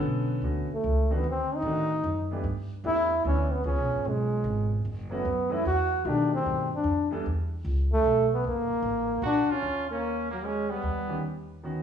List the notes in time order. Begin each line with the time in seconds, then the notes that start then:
Already playing: D3 B3 C#4 A4
0.03 B1
0.42 D2 D3 A3 B3 C#4 F#4
0.69 muted upright bass stroke
0.73 A3
0.84 C#2
1.10 D#3 A3 C4 D4 F#4
1.14 B3
1.24 D2
1.30 C4
1.55 D#4
1.62 A2 D#3 A3 C4 D4
1.67 F#4
2.04 F#2
2.31 E3 A3 B3 D4 G4
2.44 G2
2.84 E2 E3 A3 B3 D4 E4 G4
3.24 D2 E3 A3 B3 C#4 D4 A4
3.53 B3
3.64 C#2 F3 G#3 B3 C#4 G#4
3.78 B1
3.91 G#1
4.05 B1 G#3
4.44 G#1
4.85 F#1
5.10 E3 F#3 A3 B3 C#4 F#4
5.25 F#2
5.49 E3 F#3 A3 C#4 E4 F#4
5.65 E2 F#4
6.05 B2 D#3 A3 D4 G4
6.34 C4
6.46 G2
6.74 D4
6.84 F2
7.11 E3 G3 B3 D4 A4
7.26 E2
7.65 C#2
7.92 A3
8.04 B1
8.33 B3
8.44 F#1 A#3
8.70 muted upright bass stroke
8.82 A1
9.22 A#1 D4 F#4
9.48 F4, muted upright bass stroke
9.52 C#4
9.62 D#2
9.91 A#3 C#4
10.31 F#3 A#3
10.45 G#3 C#4
10.70 G3 B3
10.83 D#2
11.08 D#3 B3 C#4 G4
11.63 D#3 B3 C#4 F#4